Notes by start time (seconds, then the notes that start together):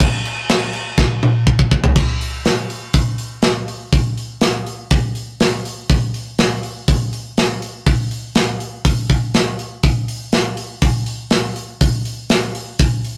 0.00 kick, crash
0.25 crash
0.49 snare, crash
0.73 crash
0.98 kick, snare
1.23 mid tom
1.47 kick
1.59 kick
1.71 kick
1.84 floor tom
1.96 kick, crash
2.21 open hi-hat
2.45 snare, open hi-hat
2.70 open hi-hat
2.93 kick, open hi-hat
3.18 open hi-hat
3.42 snare, open hi-hat
3.68 open hi-hat
3.93 kick, open hi-hat
4.17 open hi-hat
4.41 snare, open hi-hat
4.66 open hi-hat
4.91 kick, open hi-hat
5.15 open hi-hat
5.40 snare, open hi-hat
5.65 open hi-hat
5.90 kick, open hi-hat
6.14 open hi-hat
6.39 snare, open hi-hat
6.63 open hi-hat
6.88 kick, open hi-hat
7.13 open hi-hat
7.38 snare, open hi-hat
7.62 open hi-hat
7.86 kick, open hi-hat
8.11 open hi-hat
8.35 snare, open hi-hat
8.60 open hi-hat
8.85 kick, open hi-hat
9.10 kick, open hi-hat
9.34 snare, open hi-hat
9.59 open hi-hat
9.83 kick, open hi-hat
10.08 open hi-hat
10.32 snare, open hi-hat
10.57 open hi-hat
10.82 kick, open hi-hat
11.06 open hi-hat
11.31 snare, open hi-hat
11.56 open hi-hat
11.81 kick, open hi-hat
12.05 open hi-hat
12.30 snare, open hi-hat
12.55 open hi-hat
12.79 kick, open hi-hat
13.05 open hi-hat